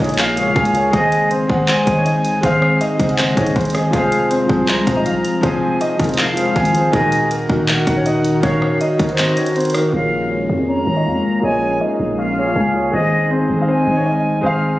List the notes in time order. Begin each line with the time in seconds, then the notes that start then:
Already playing: C#3 G#3 A#3 D#4 A#4 C#5 D#5
0.00 A#1 F4 G#4 C#5
0.04 A#3 F4, closed hi-hat
0.09 G#4 C#5, closed hi-hat
0.14 closed hi-hat
0.18 F4 F5, clap, closed hi-hat
0.34 A#3 F4 G#4, closed hi-hat
0.39 C#5
0.46 F4 F5
0.56 C#2 G#4 G#5, kick, closed hi-hat
0.65 closed hi-hat
0.72 A#3 F4 G#4, closed hi-hat
0.77 C#5
0.91 G#1 D#3 G#3 C4 G#4 C5 D#5, kick, closed hi-hat
0.96 D#5
1.12 closed hi-hat
1.31 C4 C5, closed hi-hat
1.47 G#1 G#3 G#4 C5, kick
1.52 F#5
1.68 C4 C5 G#5, clap, closed hi-hat
1.85 G#1 G#3 G#4 C5, kick, closed hi-hat
1.90 D#5
1.96 C#4 C#5
2.06 D#4 D#5, closed hi-hat
2.25 closed hi-hat
2.41 G#1 G#3 C4 G#4 C5 F5, kick, closed hi-hat
2.46 F5
2.62 cross-stick
2.81 D#4 D#5, closed hi-hat
2.96 F#1 G#3 G#4 C5, kick, closed hi-hat
3.02 D#5
3.06 G#3 G#4 C5, closed hi-hat
3.11 F#5
3.18 C4 C5 D#5, clap, closed hi-hat
3.35 G#2 G#3 C#4 G#4 C5 C#5, kick, closed hi-hat
3.40 D#5
3.46 closed hi-hat
3.56 G#1 C4 C5, kick, closed hi-hat
3.61 closed hi-hat
3.65 closed hi-hat
3.70 G#3 G#4, closed hi-hat
3.74 G#3 G#4 C5 D#5, cross-stick, open hi-hat
3.91 F1 F3 G#3 F4 G#4 F5, kick, closed hi-hat
3.96 C5
4.12 closed hi-hat
4.30 C4 C5, closed hi-hat
4.46 C2 F3 F4 G#4, kick
4.51 C5
4.68 C4 C5 A#5, clap, closed hi-hat
4.85 D#1 F3 F4 G#4, kick, closed hi-hat
4.90 C5
4.96 D#4 D#5
5.06 C2 F4 F5, closed hi-hat
5.25 closed hi-hat
5.41 F1 F3 C4 F4 G#4 C5 G#5, kick, closed hi-hat
5.46 C5
5.81 D#4 D#5, closed hi-hat
5.97 F1 F3 F4 G#4, kick, closed hi-hat
6.02 F3 A#4, closed hi-hat
6.08 F4 G#4 A#4, closed hi-hat
6.14 closed hi-hat
6.18 F4 F5, clap, closed hi-hat
6.33 F3 F4 G#4, closed hi-hat
6.38 C5
6.47 F4 F5
6.56 G#1 G#4 G#5, kick, closed hi-hat
6.65 closed hi-hat
6.72 F3 F4 G#4, closed hi-hat
6.77 C5
6.90 D#1 D#3 D#4 F#4 G#4 A#4 D#5, kick, closed hi-hat
6.94 G#3 A#4
7.12 closed hi-hat
7.31 A#3 A#4, closed hi-hat
7.47 D#1 D#3 D#4 F#4, kick
7.52 A#4
7.68 A#3 A#4 F#5, clap, closed hi-hat
7.84 D#1 D#3 D#4 F#4, kick, closed hi-hat
7.90 A#4
7.96 C#4 C#5
8.06 D#4 D#5, closed hi-hat
8.25 closed hi-hat
8.40 D#1 D#3 D#4 F#4 C#5 F5, kick, closed hi-hat
8.44 C#4 C#5
8.62 cross-stick
8.81 D#4 D#5, closed hi-hat
8.97 C#1 D#3 D#4 F#4, kick, closed hi-hat
9.02 A#4
9.07 D#3 D#4 F#4, closed hi-hat
9.12 C5
9.18 C4 C5 D#5, clap, closed hi-hat
9.35 D#3 C#4 D#4 F#4 C#5, closed hi-hat
9.40 A#4
9.46 closed hi-hat
9.56 C4 C5, closed hi-hat
9.60 closed hi-hat
9.65 closed hi-hat
9.70 D#3, closed hi-hat
9.74 A#3 D#4 F#4 A#4, cross-stick, open hi-hat
9.91 A#1 G#3 A#3 C#4 F4 G#4 F5
9.96 C#5
10.31 C#4 C#5
10.49 F2
10.56 A#3 F4 G#4
10.61 C#5
10.68 C#4 C#5 A#5
10.85 G#1 A#3 F4 G#4
10.90 C#5
10.96 D#4 D#5
11.06 F2 F4 F5
11.40 A#1 A#3 F4 G#4 C#5 G#5
11.44 C#4 D#5
11.81 D#4 D#5
12.00 A#1
12.18 F4 F5
12.34 A#3 F4 G#4
12.39 C#5
12.46 F4 F5
12.56 C#2 G#4 G#5
12.72 A#3 F4 G#4
12.77 C#5
12.91 G#1 G#3 C4 D#4 G#4 C5 D#5
12.96 D#5
13.31 C4 C5
13.50 G#1
13.57 G#3 G#4 C5
13.62 F5
13.68 C4 C5 G#5
13.85 G#1 G#3 G#4 C5
13.90 D#5
13.96 C#4 C#5
14.06 D#4 D#5
14.41 G#1 G#3 C4 G#4 C5 F5
14.46 F5